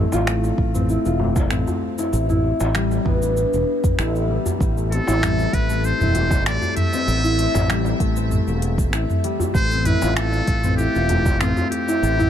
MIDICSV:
0, 0, Header, 1, 6, 480
1, 0, Start_track
1, 0, Key_signature, 0, "minor"
1, 0, Tempo, 618557
1, 1654, Time_signature, 4, 2, 24, 8
1, 9543, End_track
2, 0, Start_track
2, 0, Title_t, "Muted trumpet"
2, 0, Program_c, 0, 59
2, 3819, Note_on_c, 0, 69, 87
2, 4298, Note_on_c, 0, 71, 90
2, 4310, Note_off_c, 0, 69, 0
2, 4540, Note_on_c, 0, 72, 91
2, 4552, Note_off_c, 0, 71, 0
2, 5011, Note_off_c, 0, 72, 0
2, 5015, Note_on_c, 0, 74, 101
2, 5238, Note_off_c, 0, 74, 0
2, 5254, Note_on_c, 0, 76, 110
2, 6183, Note_off_c, 0, 76, 0
2, 7407, Note_on_c, 0, 72, 116
2, 7650, Note_on_c, 0, 71, 101
2, 7661, Note_off_c, 0, 72, 0
2, 7882, Note_off_c, 0, 71, 0
2, 7887, Note_on_c, 0, 69, 100
2, 8340, Note_off_c, 0, 69, 0
2, 8360, Note_on_c, 0, 67, 93
2, 8844, Note_on_c, 0, 65, 89
2, 8856, Note_off_c, 0, 67, 0
2, 9079, Note_off_c, 0, 65, 0
2, 9084, Note_on_c, 0, 67, 100
2, 9543, Note_off_c, 0, 67, 0
2, 9543, End_track
3, 0, Start_track
3, 0, Title_t, "Harp"
3, 0, Program_c, 1, 46
3, 0, Note_on_c, 1, 57, 80
3, 0, Note_on_c, 1, 60, 69
3, 0, Note_on_c, 1, 64, 72
3, 97, Note_on_c, 1, 65, 102
3, 144, Note_off_c, 1, 64, 0
3, 209, Note_off_c, 1, 57, 0
3, 212, Note_on_c, 1, 57, 78
3, 571, Note_off_c, 1, 60, 0
3, 574, Note_on_c, 1, 60, 89
3, 692, Note_on_c, 1, 64, 79
3, 739, Note_off_c, 1, 65, 0
3, 817, Note_on_c, 1, 65, 75
3, 864, Note_off_c, 1, 64, 0
3, 928, Note_off_c, 1, 57, 0
3, 932, Note_on_c, 1, 57, 69
3, 1167, Note_off_c, 1, 60, 0
3, 1170, Note_on_c, 1, 60, 87
3, 1537, Note_on_c, 1, 64, 95
3, 1584, Note_off_c, 1, 65, 0
3, 1777, Note_off_c, 1, 64, 0
3, 1780, Note_on_c, 1, 64, 94
3, 2134, Note_on_c, 1, 55, 99
3, 2374, Note_on_c, 1, 59, 101
3, 2420, Note_off_c, 1, 60, 0
3, 2501, Note_on_c, 1, 62, 69
3, 3093, Note_off_c, 1, 64, 0
3, 3096, Note_on_c, 1, 64, 70
3, 3326, Note_off_c, 1, 55, 0
3, 3335, Note_on_c, 1, 55, 90
3, 3515, Note_off_c, 1, 57, 0
3, 3565, Note_off_c, 1, 55, 0
3, 3575, Note_on_c, 1, 55, 76
3, 3700, Note_on_c, 1, 57, 68
3, 3816, Note_on_c, 1, 60, 70
3, 3863, Note_off_c, 1, 59, 0
3, 3936, Note_off_c, 1, 64, 0
3, 3939, Note_on_c, 1, 64, 97
3, 4047, Note_off_c, 1, 55, 0
3, 4056, Note_on_c, 1, 55, 77
3, 4417, Note_off_c, 1, 57, 0
3, 4420, Note_on_c, 1, 57, 89
3, 4535, Note_off_c, 1, 60, 0
3, 4538, Note_on_c, 1, 60, 78
3, 4660, Note_off_c, 1, 64, 0
3, 4663, Note_on_c, 1, 64, 75
3, 4673, Note_off_c, 1, 62, 0
3, 4769, Note_off_c, 1, 55, 0
3, 4778, Note_on_c, 1, 55, 68
3, 5016, Note_off_c, 1, 57, 0
3, 5019, Note_on_c, 1, 57, 88
3, 5380, Note_off_c, 1, 60, 0
3, 5383, Note_on_c, 1, 60, 100
3, 5614, Note_off_c, 1, 64, 0
3, 5617, Note_on_c, 1, 64, 89
3, 5730, Note_off_c, 1, 57, 0
3, 5733, Note_on_c, 1, 57, 70
3, 5963, Note_off_c, 1, 55, 0
3, 5972, Note_on_c, 1, 55, 93
3, 6211, Note_off_c, 1, 57, 0
3, 6214, Note_on_c, 1, 57, 98
3, 6332, Note_off_c, 1, 60, 0
3, 6336, Note_on_c, 1, 60, 71
3, 6926, Note_off_c, 1, 64, 0
3, 6929, Note_on_c, 1, 64, 73
3, 7160, Note_off_c, 1, 55, 0
3, 7170, Note_on_c, 1, 55, 94
3, 7407, Note_off_c, 1, 57, 0
3, 7410, Note_on_c, 1, 57, 78
3, 7453, Note_off_c, 1, 55, 0
3, 7535, Note_off_c, 1, 60, 0
3, 7538, Note_on_c, 1, 60, 73
3, 7647, Note_off_c, 1, 64, 0
3, 7650, Note_on_c, 1, 64, 75
3, 7780, Note_on_c, 1, 65, 95
3, 7826, Note_off_c, 1, 64, 0
3, 7886, Note_off_c, 1, 57, 0
3, 7889, Note_on_c, 1, 57, 80
3, 8253, Note_off_c, 1, 60, 0
3, 8256, Note_on_c, 1, 60, 94
3, 8371, Note_on_c, 1, 64, 82
3, 8417, Note_off_c, 1, 65, 0
3, 8499, Note_on_c, 1, 65, 78
3, 8546, Note_off_c, 1, 64, 0
3, 8608, Note_off_c, 1, 57, 0
3, 8611, Note_on_c, 1, 57, 69
3, 8852, Note_off_c, 1, 60, 0
3, 8855, Note_on_c, 1, 60, 95
3, 9220, Note_on_c, 1, 64, 97
3, 9267, Note_off_c, 1, 65, 0
3, 9458, Note_off_c, 1, 64, 0
3, 9461, Note_on_c, 1, 64, 103
3, 9543, Note_off_c, 1, 57, 0
3, 9543, Note_off_c, 1, 60, 0
3, 9543, Note_off_c, 1, 64, 0
3, 9543, End_track
4, 0, Start_track
4, 0, Title_t, "Fretless electric bass"
4, 0, Program_c, 2, 35
4, 101, Note_on_c, 2, 33, 83
4, 388, Note_off_c, 2, 33, 0
4, 448, Note_on_c, 2, 33, 90
4, 743, Note_off_c, 2, 33, 0
4, 821, Note_on_c, 2, 28, 88
4, 1178, Note_off_c, 2, 28, 0
4, 1178, Note_on_c, 2, 33, 90
4, 1256, Note_off_c, 2, 33, 0
4, 1651, Note_on_c, 2, 33, 95
4, 1945, Note_off_c, 2, 33, 0
4, 2020, Note_on_c, 2, 33, 87
4, 2307, Note_off_c, 2, 33, 0
4, 2373, Note_on_c, 2, 33, 85
4, 2666, Note_off_c, 2, 33, 0
4, 2743, Note_on_c, 2, 28, 84
4, 2814, Note_off_c, 2, 28, 0
4, 3095, Note_on_c, 2, 33, 102
4, 3387, Note_off_c, 2, 33, 0
4, 3574, Note_on_c, 2, 33, 94
4, 3866, Note_off_c, 2, 33, 0
4, 3941, Note_on_c, 2, 33, 92
4, 4228, Note_off_c, 2, 33, 0
4, 4294, Note_on_c, 2, 33, 89
4, 4586, Note_off_c, 2, 33, 0
4, 4663, Note_on_c, 2, 28, 83
4, 5014, Note_off_c, 2, 28, 0
4, 5014, Note_on_c, 2, 33, 91
4, 5094, Note_off_c, 2, 33, 0
4, 5490, Note_on_c, 2, 33, 100
4, 5784, Note_off_c, 2, 33, 0
4, 5857, Note_on_c, 2, 33, 85
4, 6146, Note_off_c, 2, 33, 0
4, 6208, Note_on_c, 2, 33, 84
4, 6503, Note_off_c, 2, 33, 0
4, 6577, Note_on_c, 2, 28, 86
4, 6933, Note_off_c, 2, 28, 0
4, 6933, Note_on_c, 2, 33, 89
4, 7013, Note_off_c, 2, 33, 0
4, 7407, Note_on_c, 2, 33, 100
4, 7703, Note_off_c, 2, 33, 0
4, 7778, Note_on_c, 2, 33, 92
4, 8067, Note_off_c, 2, 33, 0
4, 8128, Note_on_c, 2, 33, 90
4, 8423, Note_off_c, 2, 33, 0
4, 8500, Note_on_c, 2, 28, 87
4, 8858, Note_off_c, 2, 28, 0
4, 8858, Note_on_c, 2, 33, 92
4, 8936, Note_off_c, 2, 33, 0
4, 9332, Note_on_c, 2, 33, 94
4, 9543, Note_off_c, 2, 33, 0
4, 9543, End_track
5, 0, Start_track
5, 0, Title_t, "Darbuka"
5, 95, Note_on_c, 9, 63, 67
5, 173, Note_off_c, 9, 63, 0
5, 339, Note_on_c, 9, 62, 55
5, 416, Note_off_c, 9, 62, 0
5, 572, Note_on_c, 9, 62, 30
5, 649, Note_off_c, 9, 62, 0
5, 927, Note_on_c, 9, 64, 81
5, 1005, Note_off_c, 9, 64, 0
5, 1055, Note_on_c, 9, 63, 87
5, 1132, Note_off_c, 9, 63, 0
5, 1300, Note_on_c, 9, 64, 84
5, 1378, Note_off_c, 9, 64, 0
5, 1542, Note_on_c, 9, 62, 60
5, 1620, Note_off_c, 9, 62, 0
5, 1894, Note_on_c, 9, 62, 40
5, 1971, Note_off_c, 9, 62, 0
5, 2021, Note_on_c, 9, 63, 74
5, 2099, Note_off_c, 9, 63, 0
5, 2261, Note_on_c, 9, 62, 53
5, 2339, Note_off_c, 9, 62, 0
5, 2366, Note_on_c, 9, 64, 77
5, 2443, Note_off_c, 9, 64, 0
5, 2495, Note_on_c, 9, 62, 32
5, 2573, Note_off_c, 9, 62, 0
5, 3458, Note_on_c, 9, 64, 77
5, 3536, Note_off_c, 9, 64, 0
5, 3812, Note_on_c, 9, 62, 49
5, 3889, Note_off_c, 9, 62, 0
5, 3938, Note_on_c, 9, 63, 84
5, 4015, Note_off_c, 9, 63, 0
5, 4180, Note_on_c, 9, 62, 64
5, 4258, Note_off_c, 9, 62, 0
5, 4412, Note_on_c, 9, 62, 36
5, 4490, Note_off_c, 9, 62, 0
5, 4775, Note_on_c, 9, 64, 76
5, 4853, Note_off_c, 9, 64, 0
5, 4893, Note_on_c, 9, 63, 71
5, 4971, Note_off_c, 9, 63, 0
5, 5133, Note_on_c, 9, 64, 74
5, 5211, Note_off_c, 9, 64, 0
5, 5377, Note_on_c, 9, 62, 59
5, 5455, Note_off_c, 9, 62, 0
5, 5728, Note_on_c, 9, 62, 50
5, 5805, Note_off_c, 9, 62, 0
5, 5855, Note_on_c, 9, 63, 71
5, 5933, Note_off_c, 9, 63, 0
5, 6091, Note_on_c, 9, 62, 69
5, 6168, Note_off_c, 9, 62, 0
5, 6345, Note_on_c, 9, 62, 31
5, 6422, Note_off_c, 9, 62, 0
5, 7291, Note_on_c, 9, 64, 83
5, 7368, Note_off_c, 9, 64, 0
5, 7645, Note_on_c, 9, 62, 54
5, 7722, Note_off_c, 9, 62, 0
5, 7775, Note_on_c, 9, 63, 70
5, 7853, Note_off_c, 9, 63, 0
5, 8011, Note_on_c, 9, 62, 65
5, 8088, Note_off_c, 9, 62, 0
5, 8254, Note_on_c, 9, 62, 37
5, 8331, Note_off_c, 9, 62, 0
5, 8612, Note_on_c, 9, 64, 84
5, 8690, Note_off_c, 9, 64, 0
5, 8736, Note_on_c, 9, 63, 78
5, 8813, Note_off_c, 9, 63, 0
5, 8978, Note_on_c, 9, 64, 80
5, 9055, Note_off_c, 9, 64, 0
5, 9223, Note_on_c, 9, 62, 64
5, 9301, Note_off_c, 9, 62, 0
5, 9543, End_track
6, 0, Start_track
6, 0, Title_t, "Drums"
6, 97, Note_on_c, 9, 69, 68
6, 175, Note_off_c, 9, 69, 0
6, 211, Note_on_c, 9, 26, 97
6, 213, Note_on_c, 9, 69, 56
6, 289, Note_off_c, 9, 26, 0
6, 291, Note_off_c, 9, 69, 0
6, 341, Note_on_c, 9, 69, 33
6, 418, Note_off_c, 9, 69, 0
6, 450, Note_on_c, 9, 36, 103
6, 527, Note_off_c, 9, 36, 0
6, 579, Note_on_c, 9, 45, 68
6, 581, Note_on_c, 9, 69, 64
6, 657, Note_off_c, 9, 45, 0
6, 659, Note_off_c, 9, 69, 0
6, 692, Note_on_c, 9, 69, 53
6, 770, Note_off_c, 9, 69, 0
6, 818, Note_on_c, 9, 69, 33
6, 895, Note_off_c, 9, 69, 0
6, 1056, Note_on_c, 9, 36, 108
6, 1056, Note_on_c, 9, 69, 65
6, 1134, Note_off_c, 9, 36, 0
6, 1134, Note_off_c, 9, 69, 0
6, 1168, Note_on_c, 9, 26, 90
6, 1168, Note_on_c, 9, 45, 70
6, 1170, Note_on_c, 9, 69, 54
6, 1245, Note_off_c, 9, 26, 0
6, 1245, Note_off_c, 9, 45, 0
6, 1247, Note_off_c, 9, 69, 0
6, 1299, Note_on_c, 9, 69, 32
6, 1376, Note_off_c, 9, 69, 0
6, 1539, Note_on_c, 9, 69, 69
6, 1617, Note_off_c, 9, 69, 0
6, 1655, Note_on_c, 9, 69, 56
6, 1732, Note_off_c, 9, 69, 0
6, 1779, Note_on_c, 9, 45, 64
6, 1781, Note_on_c, 9, 69, 31
6, 1856, Note_off_c, 9, 45, 0
6, 1858, Note_off_c, 9, 69, 0
6, 2019, Note_on_c, 9, 69, 66
6, 2097, Note_off_c, 9, 69, 0
6, 2132, Note_on_c, 9, 26, 91
6, 2134, Note_on_c, 9, 69, 52
6, 2209, Note_off_c, 9, 26, 0
6, 2211, Note_off_c, 9, 69, 0
6, 2260, Note_on_c, 9, 69, 31
6, 2338, Note_off_c, 9, 69, 0
6, 2371, Note_on_c, 9, 36, 107
6, 2373, Note_on_c, 9, 45, 72
6, 2449, Note_off_c, 9, 36, 0
6, 2450, Note_off_c, 9, 45, 0
6, 2501, Note_on_c, 9, 69, 61
6, 2579, Note_off_c, 9, 69, 0
6, 2614, Note_on_c, 9, 69, 51
6, 2692, Note_off_c, 9, 69, 0
6, 2742, Note_on_c, 9, 69, 33
6, 2819, Note_off_c, 9, 69, 0
6, 2978, Note_on_c, 9, 36, 100
6, 2980, Note_on_c, 9, 45, 73
6, 2981, Note_on_c, 9, 69, 70
6, 3055, Note_off_c, 9, 36, 0
6, 3057, Note_off_c, 9, 45, 0
6, 3059, Note_off_c, 9, 69, 0
6, 3093, Note_on_c, 9, 26, 92
6, 3095, Note_on_c, 9, 69, 56
6, 3171, Note_off_c, 9, 26, 0
6, 3173, Note_off_c, 9, 69, 0
6, 3224, Note_on_c, 9, 69, 32
6, 3301, Note_off_c, 9, 69, 0
6, 3462, Note_on_c, 9, 69, 73
6, 3539, Note_off_c, 9, 69, 0
6, 3573, Note_on_c, 9, 36, 115
6, 3580, Note_on_c, 9, 69, 52
6, 3651, Note_off_c, 9, 36, 0
6, 3658, Note_off_c, 9, 69, 0
6, 3705, Note_on_c, 9, 69, 29
6, 3782, Note_off_c, 9, 69, 0
6, 3821, Note_on_c, 9, 46, 85
6, 3898, Note_off_c, 9, 46, 0
6, 3945, Note_on_c, 9, 69, 65
6, 4022, Note_off_c, 9, 69, 0
6, 4058, Note_on_c, 9, 26, 86
6, 4058, Note_on_c, 9, 45, 72
6, 4060, Note_on_c, 9, 69, 50
6, 4136, Note_off_c, 9, 26, 0
6, 4136, Note_off_c, 9, 45, 0
6, 4138, Note_off_c, 9, 69, 0
6, 4184, Note_on_c, 9, 69, 31
6, 4261, Note_off_c, 9, 69, 0
6, 4292, Note_on_c, 9, 36, 99
6, 4295, Note_on_c, 9, 46, 83
6, 4370, Note_off_c, 9, 36, 0
6, 4372, Note_off_c, 9, 46, 0
6, 4421, Note_on_c, 9, 69, 64
6, 4498, Note_off_c, 9, 69, 0
6, 4534, Note_on_c, 9, 69, 49
6, 4611, Note_off_c, 9, 69, 0
6, 4660, Note_on_c, 9, 45, 74
6, 4662, Note_on_c, 9, 69, 32
6, 4737, Note_off_c, 9, 45, 0
6, 4739, Note_off_c, 9, 69, 0
6, 4771, Note_on_c, 9, 46, 82
6, 4849, Note_off_c, 9, 46, 0
6, 4896, Note_on_c, 9, 36, 99
6, 4901, Note_on_c, 9, 69, 62
6, 4974, Note_off_c, 9, 36, 0
6, 4978, Note_off_c, 9, 69, 0
6, 5015, Note_on_c, 9, 26, 84
6, 5017, Note_on_c, 9, 69, 55
6, 5092, Note_off_c, 9, 26, 0
6, 5094, Note_off_c, 9, 69, 0
6, 5140, Note_on_c, 9, 69, 32
6, 5218, Note_off_c, 9, 69, 0
6, 5250, Note_on_c, 9, 45, 80
6, 5250, Note_on_c, 9, 46, 85
6, 5328, Note_off_c, 9, 45, 0
6, 5328, Note_off_c, 9, 46, 0
6, 5380, Note_on_c, 9, 69, 69
6, 5458, Note_off_c, 9, 69, 0
6, 5496, Note_on_c, 9, 69, 52
6, 5573, Note_off_c, 9, 69, 0
6, 5622, Note_on_c, 9, 69, 30
6, 5699, Note_off_c, 9, 69, 0
6, 5733, Note_on_c, 9, 46, 88
6, 5811, Note_off_c, 9, 46, 0
6, 5859, Note_on_c, 9, 45, 80
6, 5861, Note_on_c, 9, 69, 59
6, 5937, Note_off_c, 9, 45, 0
6, 5939, Note_off_c, 9, 69, 0
6, 5973, Note_on_c, 9, 26, 92
6, 5974, Note_on_c, 9, 69, 52
6, 6050, Note_off_c, 9, 26, 0
6, 6052, Note_off_c, 9, 69, 0
6, 6099, Note_on_c, 9, 69, 32
6, 6177, Note_off_c, 9, 69, 0
6, 6208, Note_on_c, 9, 36, 99
6, 6210, Note_on_c, 9, 46, 82
6, 6286, Note_off_c, 9, 36, 0
6, 6287, Note_off_c, 9, 46, 0
6, 6335, Note_on_c, 9, 69, 63
6, 6413, Note_off_c, 9, 69, 0
6, 6450, Note_on_c, 9, 45, 74
6, 6452, Note_on_c, 9, 69, 50
6, 6528, Note_off_c, 9, 45, 0
6, 6529, Note_off_c, 9, 69, 0
6, 6576, Note_on_c, 9, 69, 31
6, 6654, Note_off_c, 9, 69, 0
6, 6691, Note_on_c, 9, 46, 83
6, 6769, Note_off_c, 9, 46, 0
6, 6814, Note_on_c, 9, 36, 97
6, 6820, Note_on_c, 9, 69, 60
6, 6891, Note_off_c, 9, 36, 0
6, 6898, Note_off_c, 9, 69, 0
6, 6929, Note_on_c, 9, 26, 91
6, 6931, Note_on_c, 9, 69, 52
6, 7007, Note_off_c, 9, 26, 0
6, 7009, Note_off_c, 9, 69, 0
6, 7059, Note_on_c, 9, 45, 78
6, 7061, Note_on_c, 9, 69, 31
6, 7137, Note_off_c, 9, 45, 0
6, 7138, Note_off_c, 9, 69, 0
6, 7171, Note_on_c, 9, 46, 86
6, 7248, Note_off_c, 9, 46, 0
6, 7299, Note_on_c, 9, 69, 64
6, 7377, Note_off_c, 9, 69, 0
6, 7407, Note_on_c, 9, 36, 109
6, 7410, Note_on_c, 9, 69, 53
6, 7485, Note_off_c, 9, 36, 0
6, 7488, Note_off_c, 9, 69, 0
6, 7537, Note_on_c, 9, 69, 28
6, 7614, Note_off_c, 9, 69, 0
6, 7647, Note_on_c, 9, 45, 79
6, 7647, Note_on_c, 9, 46, 88
6, 7725, Note_off_c, 9, 45, 0
6, 7725, Note_off_c, 9, 46, 0
6, 7775, Note_on_c, 9, 69, 60
6, 7853, Note_off_c, 9, 69, 0
6, 7888, Note_on_c, 9, 26, 93
6, 7890, Note_on_c, 9, 69, 50
6, 7966, Note_off_c, 9, 26, 0
6, 7968, Note_off_c, 9, 69, 0
6, 8014, Note_on_c, 9, 69, 30
6, 8091, Note_off_c, 9, 69, 0
6, 8128, Note_on_c, 9, 46, 88
6, 8129, Note_on_c, 9, 36, 97
6, 8206, Note_off_c, 9, 46, 0
6, 8207, Note_off_c, 9, 36, 0
6, 8253, Note_on_c, 9, 45, 79
6, 8255, Note_on_c, 9, 69, 61
6, 8330, Note_off_c, 9, 45, 0
6, 8332, Note_off_c, 9, 69, 0
6, 8370, Note_on_c, 9, 69, 46
6, 8448, Note_off_c, 9, 69, 0
6, 8498, Note_on_c, 9, 69, 31
6, 8576, Note_off_c, 9, 69, 0
6, 8606, Note_on_c, 9, 46, 88
6, 8684, Note_off_c, 9, 46, 0
6, 8735, Note_on_c, 9, 36, 100
6, 8737, Note_on_c, 9, 69, 64
6, 8813, Note_off_c, 9, 36, 0
6, 8814, Note_off_c, 9, 69, 0
6, 8851, Note_on_c, 9, 26, 91
6, 8851, Note_on_c, 9, 45, 82
6, 8853, Note_on_c, 9, 69, 50
6, 8929, Note_off_c, 9, 26, 0
6, 8929, Note_off_c, 9, 45, 0
6, 8930, Note_off_c, 9, 69, 0
6, 8979, Note_on_c, 9, 69, 32
6, 9056, Note_off_c, 9, 69, 0
6, 9094, Note_on_c, 9, 46, 94
6, 9172, Note_off_c, 9, 46, 0
6, 9223, Note_on_c, 9, 69, 67
6, 9301, Note_off_c, 9, 69, 0
6, 9339, Note_on_c, 9, 69, 52
6, 9417, Note_off_c, 9, 69, 0
6, 9464, Note_on_c, 9, 45, 71
6, 9466, Note_on_c, 9, 69, 30
6, 9541, Note_off_c, 9, 45, 0
6, 9543, Note_off_c, 9, 69, 0
6, 9543, End_track
0, 0, End_of_file